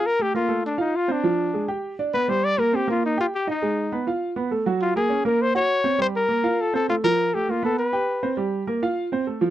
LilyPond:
<<
  \new Staff \with { instrumentName = "Trumpet" } { \time 4/4 \key bes \major \tempo 4 = 202 bes'8 g'8 f'4 d'8 ees'8 f'8 d'8~ | d'4. r4. b'8 c''8 | d''8 bes'8 g'8 f'8 ees'8 f'8 g'8 ees'8~ | ees'4. r2 r8 |
f'8 aes'4 bes'8 c''8 des''4. | c''8 bes'4. a'8 a'8 f'8 bes'8~ | bes'8 g'8 f'8 a'8 b'2 | r1 | }
  \new Staff \with { instrumentName = "Grand piano" } { \time 4/4 \key bes \major r8 <a a'>8 <bes bes'>8 <a a'>4 <f' f''>4 <c' c''>8 | <f f'>4 <aes aes'>8 <g' g''>4 <d' d''>8 <b b'>8 <g g'>8~ | <g g'>8 <bes bes'>8 <c' c''>8 <bes bes'>4 <g' g''>4 <ees' ees''>8 | <aes aes'>4 <ces' ces''>8 <f' f''>4 <ces' ces''>8 <a a'>8 <ges ges'>8~ |
<ges ges'>8 <bes bes'>8 <des' des''>8 <bes bes'>4 <ges' ges''>4 <c' c''>8 | <g g'>4 <bes bes'>8 <f' f''>4 <c' c''>8 <a a'>8 <f f'>8~ | <f f'>8 <a a'>8 <bes bes'>8 <ces' ces''>4 <g' g''>4 <c' c''>8 | <g g'>4 <bes bes'>8 <f' f''>4 <c' c''>8 <a a'>8 <f f'>8 | }
>>